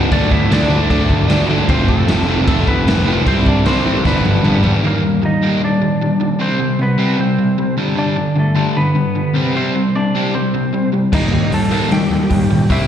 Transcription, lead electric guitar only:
0.00 0.14 B4 medium
0.13 0.31 D4 medium
0.13 0.32 D5 loud
0.32 0.50 E4 medium
0.32 0.52 E5 loud
0.53 0.89 D4 medium
0.53 0.89 D5 medium
0.90 1.46 D4 medium
0.90 1.45 D5 loud
1.70 1.88 C4 medium
1.70 1.89 C5 loud
1.88 2.43 A3 medium
1.88 2.47 A4 medium
2.48 2.67 A3 medium
2.48 2.68 A4 loud
2.68 3.23 B3 medium
2.68 3.27 B4 loud
3.28 3.45 C4 medium
3.28 3.47 C5 loud
3.48 3.66 D4 medium
3.48 3.67 D5 medium
3.66 4.03 C4 medium
3.66 4.06 C5 medium
4.07 4.61 B3 medium
4.07 4.61 B4 medium
4.87 5.22 A#3 medium
4.87 5.25 A#4 medium
5.25 5.60 D#4 medium
5.25 5.61 D#5 medium
5.64 6.38 D4 medium
5.64 6.41 D5 medium
6.41 6.78 C4 medium
6.41 6.82 C5 medium
6.81 7.18 B3 medium
6.81 7.20 B4 medium
7.20 7.75 C4 medium
7.20 7.75 C5 medium
7.99 8.35 D4 medium
7.99 8.39 D5 medium
8.39 8.75 A3 medium
8.39 8.79 A4 medium
8.77 9.52 B3 medium
8.77 9.56 B4 medium
9.57 9.93 C4 medium
9.57 9.97 C5 medium
9.96 10.32 D4 medium
9.96 10.36 D5 loud
10.35 10.90 C4 medium
10.35 10.89 C5 medium
11.14 11.50 D#4 medium
11.14 11.54 D#5 medium
11.54 11.90 A4 medium
11.54 11.93 A5 medium
11.93 12.67 G4 medium
11.93 12.71 G5 loud
12.72 12.87 E4 medium
12.72 12.87 E5 medium

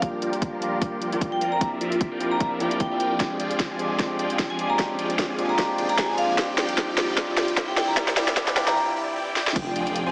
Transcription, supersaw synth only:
0.02 0.20 F4 medium
0.02 0.20 A#4 medium
0.02 0.20 D5 medium
0.02 0.20 G5 loud
0.22 0.50 F3 medium
0.22 0.50 F4 medium
0.22 0.50 A#4 medium
0.22 0.50 D5 medium
0.22 0.50 G5 loud
0.53 0.79 F3 loud
0.53 0.79 F4 medium
0.53 0.79 A#4 medium
0.53 0.79 D5 medium
0.53 0.79 A#5 loud
0.82 1.10 F3 medium
0.82 1.10 F4 medium
0.82 1.10 A#4 medium
0.82 1.10 G5 loud
1.12 1.39 F3 medium
1.12 1.39 F4 medium
1.12 1.39 A#4 medium
1.12 1.39 D5 medium
1.12 1.39 G5 loud
1.41 1.59 F3 medium
1.41 1.59 F4 medium
1.41 1.59 A#4 medium
1.41 1.59 D5 medium
1.41 1.59 A#5 loud
1.61 1.79 E5 loud
1.81 2.09 F3 medium
1.81 2.09 F4 medium
1.81 2.09 A#4 medium
1.81 2.09 D5 medium
1.81 2.09 E5 loud
2.12 2.38 F3 medium
2.12 2.38 F4 medium
2.12 2.38 A#4 medium
2.12 2.38 D5 medium
2.12 2.38 G5 loud
2.41 2.59 F3 medium
2.41 2.59 F4 medium
2.41 2.59 E5 loud
2.60 2.89 F3 loud
2.60 2.89 F4 medium
2.60 2.89 A#4 medium
2.60 2.89 D5 medium
2.60 2.89 G5 loud
2.91 2.98 F3 medium
2.91 2.98 F4 medium
2.91 2.98 A#4 medium
2.91 2.98 D5 medium
2.91 2.98 E5 medium
3.00 3.18 F3 medium
3.00 3.18 F4 medium
3.00 3.18 A#4 medium
3.00 3.18 D5 medium
3.00 3.18 G5 medium
3.20 3.38 F3 medium
3.20 3.38 F4 medium
3.20 3.38 G#4 medium
3.40 3.68 F3 medium
3.40 3.68 F4 medium
3.40 3.68 G#4 medium
3.40 3.68 D5 medium
3.40 3.68 G5 loud
3.71 3.97 F3 medium
3.71 3.97 F4 medium
3.71 3.97 G#4 medium
3.71 3.97 D5 medium
3.71 3.97 G#5 loud
3.99 4.17 F3 medium
3.99 4.17 F4 medium
3.99 4.17 G#4 medium
3.99 4.17 D5 medium
3.99 4.17 G5 medium
4.19 4.48 F3 medium
4.19 4.48 F4 medium
4.19 4.48 G#4 medium
4.19 4.48 D5 medium
4.19 4.48 G5 loud
4.50 4.77 F3 medium
4.50 4.77 F4 medium
4.50 4.77 G#4 medium
4.50 4.77 D5 medium
4.50 4.77 G#5 loud
4.79 4.97 F3 medium
4.79 4.97 F4 medium
4.79 4.97 D5 medium
4.79 4.97 G5 medium
4.99 5.27 F3 medium
4.99 5.27 F4 medium
4.99 5.27 G#4 medium
4.99 5.27 D5 medium
4.99 5.27 G5 loud
5.30 5.56 F3 medium
5.30 5.56 F4 medium
5.30 5.56 G#4 medium
5.30 5.56 D5 medium
5.30 5.56 G#5 loud
5.58 5.76 D5 medium
5.78 6.06 F3 medium
5.78 6.07 F4 medium
5.78 6.06 G#4 medium
5.78 6.07 D5 medium
5.78 6.06 G5 loud
6.09 6.36 F3 medium
6.09 6.36 F4 medium
6.09 6.36 G#4 medium
6.09 6.36 D5 medium
6.09 6.36 G#5 loud
6.58 6.76 F3 medium
6.58 6.76 F4 medium
6.58 6.76 G4 medium
6.58 6.76 D5 medium
6.58 6.76 G5 loud
6.78 6.95 F3 loud
6.78 6.95 G4 medium
6.78 6.95 D5 medium
6.78 6.95 G5 loud
6.97 7.16 F3 medium
6.97 7.16 F4 medium
6.97 7.16 G4 medium
6.97 7.16 D5 medium
6.97 7.16 G5 loud
7.17 7.35 F3 medium
7.17 7.35 F4 medium
7.17 7.35 G4 medium
7.17 7.35 G5 loud
7.37 7.56 F3 medium
7.37 7.56 F4 medium
7.37 7.56 G4 medium
7.37 7.56 D5 medium
7.37 7.56 G5 loud
7.57 7.75 F4 medium
7.57 7.75 G4 medium
7.57 7.75 D5 medium
7.57 7.75 G5 loud
7.77 7.95 E3 medium
7.77 7.95 E4 medium
7.77 7.95 G4 medium
7.77 7.95 D5 medium
7.77 7.95 G5 loud
7.97 8.15 G4 medium
7.97 8.15 D5 medium
8.17 8.34 E3 loud
8.17 8.34 E4 medium
8.17 8.34 G4 medium
8.17 8.34 D5 medium
8.17 8.34 G5 loud
8.37 8.54 E3 loud
8.37 8.54 G4 medium
8.37 8.54 D5 medium
8.37 8.54 G5 loud
8.56 8.74 E3 loud
8.56 8.74 E4 medium
8.56 8.74 G4 medium
8.56 8.74 D5 medium
8.56 8.74 G5 loud
8.76 8.94 E3 medium
8.76 8.94 E4 medium
8.76 8.94 G4 medium
8.76 8.94 D5 medium
8.76 8.94 G5 loud
8.96 9.14 E3 medium
8.96 9.14 E4 medium
8.96 9.14 G4 medium
8.96 9.14 D5 medium
8.96 9.14 G5 loud
9.16 9.34 E3 medium
9.16 9.34 E4 medium
9.16 9.34 G4 medium
9.16 9.34 D5 medium
9.16 9.34 G5 loud
9.36 9.54 E3 loud
9.36 9.54 E4 medium
9.36 9.54 G4 medium
9.36 9.54 D5 medium
9.36 9.54 G5 loud
9.56 9.74 F3 medium
9.56 9.74 F4 medium
9.56 9.74 G#4 medium
9.76 10.04 F3 medium
9.76 10.04 F4 medium
9.76 10.04 G#4 medium
9.76 10.04 D5 medium
9.76 10.04 G5 loud
10.06 10.12 F3 medium
10.06 10.12 F4 medium
10.06 10.12 G#4 medium
10.06 10.12 D5 medium
10.06 10.12 G#5 loud

